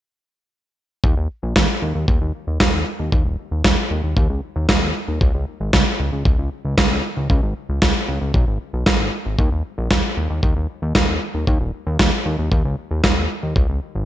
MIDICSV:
0, 0, Header, 1, 3, 480
1, 0, Start_track
1, 0, Tempo, 521739
1, 955, Time_signature, 4, 2, 24, 8
1, 12928, End_track
2, 0, Start_track
2, 0, Title_t, "Analog synth bass"
2, 0, Program_c, 0, 38
2, 954, Note_on_c, 0, 39, 102
2, 1057, Note_off_c, 0, 39, 0
2, 1075, Note_on_c, 0, 39, 75
2, 1177, Note_off_c, 0, 39, 0
2, 1315, Note_on_c, 0, 34, 77
2, 1418, Note_off_c, 0, 34, 0
2, 1435, Note_on_c, 0, 39, 99
2, 1537, Note_off_c, 0, 39, 0
2, 1676, Note_on_c, 0, 39, 91
2, 1778, Note_off_c, 0, 39, 0
2, 1795, Note_on_c, 0, 39, 78
2, 1897, Note_off_c, 0, 39, 0
2, 1915, Note_on_c, 0, 39, 98
2, 2017, Note_off_c, 0, 39, 0
2, 2035, Note_on_c, 0, 39, 76
2, 2137, Note_off_c, 0, 39, 0
2, 2275, Note_on_c, 0, 39, 78
2, 2377, Note_off_c, 0, 39, 0
2, 2394, Note_on_c, 0, 39, 98
2, 2497, Note_off_c, 0, 39, 0
2, 2515, Note_on_c, 0, 39, 75
2, 2617, Note_off_c, 0, 39, 0
2, 2755, Note_on_c, 0, 39, 78
2, 2857, Note_off_c, 0, 39, 0
2, 2874, Note_on_c, 0, 39, 99
2, 2977, Note_off_c, 0, 39, 0
2, 2992, Note_on_c, 0, 27, 73
2, 3096, Note_off_c, 0, 27, 0
2, 3233, Note_on_c, 0, 39, 81
2, 3336, Note_off_c, 0, 39, 0
2, 3354, Note_on_c, 0, 39, 94
2, 3457, Note_off_c, 0, 39, 0
2, 3594, Note_on_c, 0, 39, 93
2, 3697, Note_off_c, 0, 39, 0
2, 3712, Note_on_c, 0, 39, 79
2, 3816, Note_off_c, 0, 39, 0
2, 3833, Note_on_c, 0, 39, 99
2, 3937, Note_off_c, 0, 39, 0
2, 3954, Note_on_c, 0, 37, 73
2, 4057, Note_off_c, 0, 37, 0
2, 4193, Note_on_c, 0, 39, 83
2, 4296, Note_off_c, 0, 39, 0
2, 4314, Note_on_c, 0, 39, 99
2, 4417, Note_off_c, 0, 39, 0
2, 4434, Note_on_c, 0, 39, 75
2, 4537, Note_off_c, 0, 39, 0
2, 4674, Note_on_c, 0, 39, 77
2, 4777, Note_off_c, 0, 39, 0
2, 4795, Note_on_c, 0, 37, 101
2, 4897, Note_off_c, 0, 37, 0
2, 4916, Note_on_c, 0, 37, 75
2, 5018, Note_off_c, 0, 37, 0
2, 5156, Note_on_c, 0, 32, 81
2, 5258, Note_off_c, 0, 32, 0
2, 5274, Note_on_c, 0, 37, 98
2, 5377, Note_off_c, 0, 37, 0
2, 5516, Note_on_c, 0, 37, 92
2, 5618, Note_off_c, 0, 37, 0
2, 5635, Note_on_c, 0, 37, 80
2, 5738, Note_off_c, 0, 37, 0
2, 5755, Note_on_c, 0, 37, 100
2, 5857, Note_off_c, 0, 37, 0
2, 5875, Note_on_c, 0, 37, 74
2, 5978, Note_off_c, 0, 37, 0
2, 6115, Note_on_c, 0, 37, 81
2, 6218, Note_off_c, 0, 37, 0
2, 6234, Note_on_c, 0, 37, 98
2, 6337, Note_off_c, 0, 37, 0
2, 6357, Note_on_c, 0, 37, 74
2, 6458, Note_off_c, 0, 37, 0
2, 6596, Note_on_c, 0, 37, 77
2, 6698, Note_off_c, 0, 37, 0
2, 6715, Note_on_c, 0, 37, 101
2, 6817, Note_off_c, 0, 37, 0
2, 6835, Note_on_c, 0, 32, 75
2, 6938, Note_off_c, 0, 32, 0
2, 7075, Note_on_c, 0, 37, 79
2, 7177, Note_off_c, 0, 37, 0
2, 7195, Note_on_c, 0, 37, 98
2, 7298, Note_off_c, 0, 37, 0
2, 7436, Note_on_c, 0, 37, 92
2, 7538, Note_off_c, 0, 37, 0
2, 7555, Note_on_c, 0, 37, 79
2, 7658, Note_off_c, 0, 37, 0
2, 7675, Note_on_c, 0, 35, 100
2, 7777, Note_off_c, 0, 35, 0
2, 7795, Note_on_c, 0, 32, 75
2, 7898, Note_off_c, 0, 32, 0
2, 8035, Note_on_c, 0, 35, 82
2, 8138, Note_off_c, 0, 35, 0
2, 8156, Note_on_c, 0, 32, 99
2, 8258, Note_off_c, 0, 32, 0
2, 8276, Note_on_c, 0, 32, 73
2, 8378, Note_off_c, 0, 32, 0
2, 8516, Note_on_c, 0, 32, 78
2, 8618, Note_off_c, 0, 32, 0
2, 8635, Note_on_c, 0, 39, 97
2, 8738, Note_off_c, 0, 39, 0
2, 8757, Note_on_c, 0, 39, 76
2, 8858, Note_off_c, 0, 39, 0
2, 8996, Note_on_c, 0, 34, 81
2, 9098, Note_off_c, 0, 34, 0
2, 9115, Note_on_c, 0, 39, 98
2, 9218, Note_off_c, 0, 39, 0
2, 9357, Note_on_c, 0, 39, 94
2, 9458, Note_off_c, 0, 39, 0
2, 9476, Note_on_c, 0, 39, 80
2, 9578, Note_off_c, 0, 39, 0
2, 9596, Note_on_c, 0, 39, 99
2, 9698, Note_off_c, 0, 39, 0
2, 9716, Note_on_c, 0, 39, 76
2, 9818, Note_off_c, 0, 39, 0
2, 9956, Note_on_c, 0, 39, 83
2, 10058, Note_off_c, 0, 39, 0
2, 10075, Note_on_c, 0, 39, 101
2, 10178, Note_off_c, 0, 39, 0
2, 10196, Note_on_c, 0, 39, 73
2, 10298, Note_off_c, 0, 39, 0
2, 10436, Note_on_c, 0, 39, 77
2, 10538, Note_off_c, 0, 39, 0
2, 10556, Note_on_c, 0, 39, 98
2, 10658, Note_off_c, 0, 39, 0
2, 10675, Note_on_c, 0, 27, 75
2, 10778, Note_off_c, 0, 27, 0
2, 10916, Note_on_c, 0, 39, 79
2, 11018, Note_off_c, 0, 39, 0
2, 11036, Note_on_c, 0, 39, 97
2, 11138, Note_off_c, 0, 39, 0
2, 11275, Note_on_c, 0, 39, 94
2, 11378, Note_off_c, 0, 39, 0
2, 11395, Note_on_c, 0, 39, 80
2, 11498, Note_off_c, 0, 39, 0
2, 11516, Note_on_c, 0, 39, 97
2, 11618, Note_off_c, 0, 39, 0
2, 11636, Note_on_c, 0, 37, 77
2, 11738, Note_off_c, 0, 37, 0
2, 11875, Note_on_c, 0, 39, 79
2, 11977, Note_off_c, 0, 39, 0
2, 11996, Note_on_c, 0, 39, 97
2, 12098, Note_off_c, 0, 39, 0
2, 12115, Note_on_c, 0, 39, 74
2, 12217, Note_off_c, 0, 39, 0
2, 12355, Note_on_c, 0, 39, 77
2, 12458, Note_off_c, 0, 39, 0
2, 12475, Note_on_c, 0, 37, 101
2, 12577, Note_off_c, 0, 37, 0
2, 12595, Note_on_c, 0, 37, 76
2, 12698, Note_off_c, 0, 37, 0
2, 12835, Note_on_c, 0, 32, 82
2, 12928, Note_off_c, 0, 32, 0
2, 12928, End_track
3, 0, Start_track
3, 0, Title_t, "Drums"
3, 954, Note_on_c, 9, 36, 116
3, 1046, Note_off_c, 9, 36, 0
3, 1434, Note_on_c, 9, 36, 117
3, 1434, Note_on_c, 9, 38, 112
3, 1526, Note_off_c, 9, 36, 0
3, 1526, Note_off_c, 9, 38, 0
3, 1914, Note_on_c, 9, 36, 113
3, 2006, Note_off_c, 9, 36, 0
3, 2393, Note_on_c, 9, 38, 115
3, 2394, Note_on_c, 9, 36, 112
3, 2485, Note_off_c, 9, 38, 0
3, 2486, Note_off_c, 9, 36, 0
3, 2874, Note_on_c, 9, 36, 117
3, 2966, Note_off_c, 9, 36, 0
3, 3353, Note_on_c, 9, 36, 124
3, 3353, Note_on_c, 9, 38, 114
3, 3445, Note_off_c, 9, 36, 0
3, 3445, Note_off_c, 9, 38, 0
3, 3833, Note_on_c, 9, 36, 121
3, 3925, Note_off_c, 9, 36, 0
3, 4312, Note_on_c, 9, 38, 120
3, 4314, Note_on_c, 9, 36, 115
3, 4404, Note_off_c, 9, 38, 0
3, 4406, Note_off_c, 9, 36, 0
3, 4794, Note_on_c, 9, 36, 121
3, 4886, Note_off_c, 9, 36, 0
3, 5273, Note_on_c, 9, 38, 117
3, 5274, Note_on_c, 9, 36, 121
3, 5365, Note_off_c, 9, 38, 0
3, 5366, Note_off_c, 9, 36, 0
3, 5754, Note_on_c, 9, 36, 121
3, 5846, Note_off_c, 9, 36, 0
3, 6234, Note_on_c, 9, 36, 123
3, 6234, Note_on_c, 9, 38, 124
3, 6326, Note_off_c, 9, 36, 0
3, 6326, Note_off_c, 9, 38, 0
3, 6714, Note_on_c, 9, 36, 120
3, 6806, Note_off_c, 9, 36, 0
3, 7193, Note_on_c, 9, 38, 116
3, 7194, Note_on_c, 9, 36, 123
3, 7285, Note_off_c, 9, 38, 0
3, 7286, Note_off_c, 9, 36, 0
3, 7675, Note_on_c, 9, 36, 117
3, 7767, Note_off_c, 9, 36, 0
3, 8154, Note_on_c, 9, 38, 120
3, 8155, Note_on_c, 9, 36, 118
3, 8246, Note_off_c, 9, 38, 0
3, 8247, Note_off_c, 9, 36, 0
3, 8635, Note_on_c, 9, 36, 113
3, 8727, Note_off_c, 9, 36, 0
3, 9113, Note_on_c, 9, 38, 112
3, 9115, Note_on_c, 9, 36, 117
3, 9205, Note_off_c, 9, 38, 0
3, 9207, Note_off_c, 9, 36, 0
3, 9595, Note_on_c, 9, 36, 118
3, 9687, Note_off_c, 9, 36, 0
3, 10074, Note_on_c, 9, 38, 114
3, 10075, Note_on_c, 9, 36, 115
3, 10166, Note_off_c, 9, 38, 0
3, 10167, Note_off_c, 9, 36, 0
3, 10556, Note_on_c, 9, 36, 110
3, 10648, Note_off_c, 9, 36, 0
3, 11034, Note_on_c, 9, 38, 108
3, 11035, Note_on_c, 9, 36, 114
3, 11126, Note_off_c, 9, 38, 0
3, 11127, Note_off_c, 9, 36, 0
3, 11515, Note_on_c, 9, 36, 108
3, 11607, Note_off_c, 9, 36, 0
3, 11993, Note_on_c, 9, 38, 110
3, 11995, Note_on_c, 9, 36, 113
3, 12085, Note_off_c, 9, 38, 0
3, 12087, Note_off_c, 9, 36, 0
3, 12474, Note_on_c, 9, 36, 107
3, 12566, Note_off_c, 9, 36, 0
3, 12928, End_track
0, 0, End_of_file